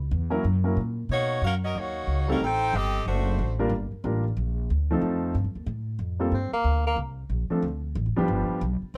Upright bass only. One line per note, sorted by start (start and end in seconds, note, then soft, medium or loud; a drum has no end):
0.00 0.10 C#2 medium
0.11 0.43 E2 medium
0.44 0.76 F#2 medium
0.77 1.09 A#2 medium
1.09 1.41 B2 medium
1.42 1.74 F#2 medium
1.75 2.06 D#2 medium
2.07 2.39 C#2 medium
2.40 2.72 A1 medium
2.73 3.05 G1 medium
3.06 3.37 F#1 medium
3.39 3.69 A1 medium
3.69 3.89 G1 medium
3.92 muted upright bass stroke soft
4.04 4.36 A1 medium
4.37 4.68 A#1 medium
4.70 5.01 D2 medium
5.01 5.33 F2 medium
5.35 5.46 G2 medium
5.44 5.55 F2 medium
5.55 5.66 D#2 medium
5.66 5.98 A2 medium
5.99 6.31 F2 medium
6.32 6.51 G2 medium
6.52 muted upright bass stroke soft
6.64 6.96 D2 medium
6.96 7.29 C2 medium
7.30 7.49 A#1 medium
7.50 muted upright bass stroke soft
7.62 7.95 D2 medium
7.95 8.07 A1 loud
8.06 8.17 F1 medium
8.18 8.27 D1 medium
8.28 8.48 G1 medium
8.49 muted upright bass stroke soft
8.61 8.81 B1 loud
8.82 muted upright bass stroke soft
8.94 8.97 C2 medium